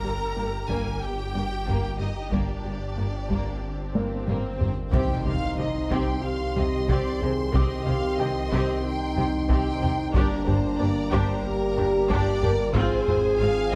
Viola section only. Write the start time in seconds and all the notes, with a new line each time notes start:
Already playing: A#4
0.69 A#4
1.02 G4
2.00 D#4
2.32 D4
4.92 C4 G4
5.26 C4 G4
5.58 C4 G4
5.90 C4 G4
6.56 C4 G4
6.89 C4 G4
7.22 C4 G4
7.54 C4 G4
7.87 C4 G4
8.20 C4 G4
8.52 C4 G4
9.18 C4 G4
9.50 C4 G4
9.83 C4 G4
10.15 D4 G4
10.47 D4 G4
10.80 D4 G4
11.12 D4 G4
11.77 D4 G4
12.10 D4 G4
12.42 D4 G4
12.75 C4 F4
13.08 C4 F4
13.40 C4 F4